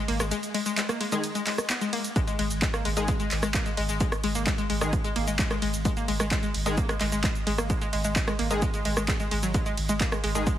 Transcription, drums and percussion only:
0.08 open hi-hat, ride
0.20 cross-stick, closed hi-hat, shaker
0.31 closed hi-hat, ride, shaker
0.43 closed hi-hat, shaker
0.54 open hi-hat, ride
0.66 closed hi-hat, shaker
0.78 clap, closed hi-hat, ride, shaker
0.89 cross-stick, closed hi-hat, shaker
1.01 open hi-hat, ride
1.12 closed hi-hat, shaker
1.24 closed hi-hat, ride, shaker
1.35 closed hi-hat, shaker
1.47 clap, open hi-hat, ride
1.58 cross-stick, closed hi-hat, shaker
1.70 clap, closed hi-hat, ride, shaker
1.81 closed hi-hat, shaker
1.93 open hi-hat, ride
2.04 closed hi-hat, shaker
2.16 kick, closed hi-hat, ride, shaker
2.28 closed hi-hat, shaker
2.39 open hi-hat, ride
2.51 closed hi-hat, shaker
2.62 kick, clap, closed hi-hat, ride, shaker
2.74 cross-stick, closed hi-hat, shaker
2.85 open hi-hat, ride
2.97 closed hi-hat, shaker
3.08 kick, closed hi-hat, ride, shaker
3.20 closed hi-hat, shaker
3.31 clap, open hi-hat, ride
3.43 cross-stick, closed hi-hat, shaker
3.54 kick, clap, closed hi-hat, ride, shaker
3.66 closed hi-hat, shaker
3.77 open hi-hat, ride
3.89 closed hi-hat, shaker
4.00 kick, closed hi-hat, ride, shaker
4.12 cross-stick, closed hi-hat, shaker
4.24 open hi-hat, ride
4.35 closed hi-hat, shaker
4.47 kick, clap, closed hi-hat, ride, shaker
4.58 closed hi-hat, shaker
4.70 open hi-hat, ride
4.81 cross-stick, closed hi-hat, shaker
4.93 kick, closed hi-hat, ride, shaker
5.05 closed hi-hat, shaker
5.16 open hi-hat, ride
5.28 closed hi-hat, shaker
5.39 kick, clap, closed hi-hat, shaker
5.51 cross-stick, closed hi-hat, shaker
5.62 open hi-hat, ride
5.74 closed hi-hat, shaker
5.85 kick, closed hi-hat, ride, shaker
5.97 closed hi-hat, shaker
6.08 open hi-hat, ride
6.20 cross-stick, closed hi-hat, shaker
6.31 kick, clap, closed hi-hat, ride, shaker
6.43 closed hi-hat, shaker
6.54 open hi-hat, ride
6.66 closed hi-hat, shaker
6.78 kick, closed hi-hat, ride, shaker
6.89 cross-stick, closed hi-hat, shaker
7.01 clap, open hi-hat, ride
7.12 closed hi-hat, shaker
7.24 kick, clap, closed hi-hat, ride, shaker
7.35 closed hi-hat, shaker
7.47 open hi-hat, ride
7.58 cross-stick, closed hi-hat, shaker
7.70 kick, closed hi-hat, ride, shaker
7.81 closed hi-hat, shaker
7.93 open hi-hat, ride
8.04 closed hi-hat, shaker
8.16 kick, clap, closed hi-hat, ride, shaker
8.28 cross-stick, closed hi-hat, shaker
8.39 open hi-hat, ride
8.51 closed hi-hat, shaker
8.62 kick, closed hi-hat, ride, shaker
8.74 closed hi-hat, shaker
8.85 open hi-hat, ride
8.97 cross-stick, closed hi-hat, shaker
9.08 kick, clap, closed hi-hat, ride, shaker
9.20 closed hi-hat, shaker
9.31 open hi-hat, ride
9.43 closed hi-hat, shaker
9.54 kick, closed hi-hat, ride, shaker
9.66 closed hi-hat, shaker
9.77 open hi-hat, ride
9.89 closed hi-hat, shaker
10.01 kick, clap, closed hi-hat, ride, shaker
10.12 cross-stick, closed hi-hat, shaker
10.24 open hi-hat, ride
10.35 closed hi-hat, shaker
10.47 kick, closed hi-hat, ride, shaker

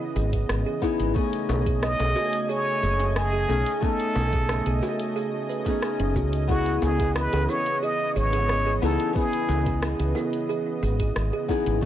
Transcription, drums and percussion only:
0.17 shaker
0.33 kick, closed hi-hat, shaker
0.49 cross-stick, shaker
0.83 kick, shaker
1.00 closed hi-hat, shaker
1.16 kick, shaker
1.33 closed hi-hat, shaker
1.49 high bongo, shaker
1.66 kick, closed hi-hat, shaker
1.83 cross-stick, shaker
2.00 closed hi-hat, high bongo, shaker
2.16 high bongo, shaker
2.33 closed hi-hat, shaker
2.50 shaker
2.83 shaker
2.99 closed hi-hat, high bongo, shaker
3.16 cross-stick, shaker
3.50 shaker
3.66 closed hi-hat, shaker
3.83 kick, shaker
4.00 closed hi-hat, shaker
4.16 high bongo, shaker
4.33 kick, closed hi-hat, shaker
4.49 cross-stick, shaker
4.66 closed hi-hat, shaker
4.83 high bongo, shaker
5.00 closed hi-hat, shaker
5.17 shaker
5.50 shaker
5.66 kick, closed hi-hat, shaker
5.82 cross-stick, shaker
6.00 closed hi-hat
6.16 kick, shaker
6.33 closed hi-hat, shaker
6.49 kick, shaker
6.66 closed hi-hat, shaker
6.82 high bongo, shaker
7.00 kick, closed hi-hat, shaker
7.16 cross-stick, shaker
7.33 closed hi-hat, high bongo, shaker
7.49 high bongo, shaker
7.66 closed hi-hat, shaker
7.83 shaker
8.17 shaker
8.33 closed hi-hat, high bongo, shaker
8.49 cross-stick, shaker
8.83 shaker
9.00 closed hi-hat, shaker
9.16 kick, shaker
9.33 closed hi-hat, shaker
9.49 high bongo, shaker
9.66 kick, closed hi-hat, shaker
9.82 cross-stick, shaker
10.00 closed hi-hat, shaker
10.15 high bongo, shaker
10.33 closed hi-hat, shaker
10.50 shaker
10.83 shaker
11.00 kick, closed hi-hat, shaker
11.16 cross-stick, shaker
11.49 kick, shaker
11.66 closed hi-hat, shaker

